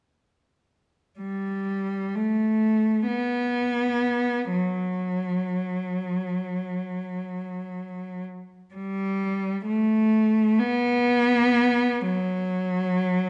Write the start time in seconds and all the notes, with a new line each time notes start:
1.20 G3
2.15 A3
3.07 B3
4.52 F#3
8.75 G3
9.66 A3
10.59 B3
12.02 F#3